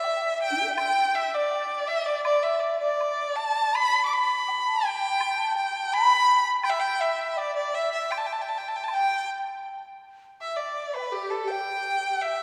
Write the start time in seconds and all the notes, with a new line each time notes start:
Already playing: E5
0.04 low woodblock
0.16 G5
0.22 E5
0.42 G5
0.51 D4
0.56 E4
0.61 G4 A4
0.69 D5
0.73 E5 G5
0.78 G5, high woodblock
1.15 E5
1.34 D5
1.51 low woodblock
1.88 E5
2.06 D5
2.25 D5, high woodblock
2.43 E5
2.59 D5
2.80 D5
3.01 high woodblock
3.36 A5
3.74 B5, high woodblock
4.06 D6
4.13 B5
4.48 low woodblock
4.66 A5
4.83 G5
4.91 A5
4.97 G5
5.20 high woodblock
5.37 A5
5.56 G5
5.91 B5, low woodblock
6.63 G5, high woodblock
6.70 E5
6.77 G5
7.00 E5
7.37 D5, low woodblock
7.55 D5
7.74 E5
7.93 E5
8.11 G5, high woodblock
8.18 A5
8.26 G5
8.32 A5
8.42 G5
8.49 A5
8.58 G5
8.68 A5
8.76 G5
8.84 A5
8.88 high woodblock
8.93 G5
10.41 E5
10.57 D5
10.94 B4 G5 B5
11.02 D5 E5
11.08 A4 B4
11.12 G4
11.31 A4
11.48 G5
12.07 G5
12.22 E5